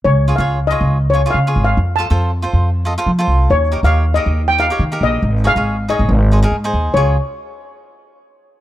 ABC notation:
X:1
M:4/4
L:1/16
Q:"Swing 16ths" 1/4=139
K:Db
V:1 name="Steel pan"
d3 f3 e4 d2 f3 f- | f2 =a4 z8 z2 | d3 f3 e3 =g f4 e2- | e2 f4 e8 z2 |
d2 z12 z2 |]
V:2 name="Cavaquinho"
z2 [FAd] [FAd]2 z [FAd]2 z2 [FAd] [FAd] z [FAd]3 | z2 [F=Ac] [FAc]2 z [FAc]2 z2 [FAe] [FAc] z [FAc]3 | z2 [E=GB] [EGd]2 z [EGB]2 z2 [EGB] [EGd] z [EGB]3 | z2 [EAd] [EAd]2 z [EAd]2 z2 [EAc] [EAB] z [EAc]3 |
[FAd]2 z12 z2 |]
V:3 name="Upright bass" clef=bass
D,,3 D,,4 D,,4- D,, D,2 A,,,2 | F,,3 F,,4 F,,4- F,, F,2 C,,2 | E,,3 E,,4 E,,4- E,, E,2 B,,,2 | A,,,3 A,,,4 A,,, A,,,4 A,,2 E,,2 |
D,,2 z12 z2 |]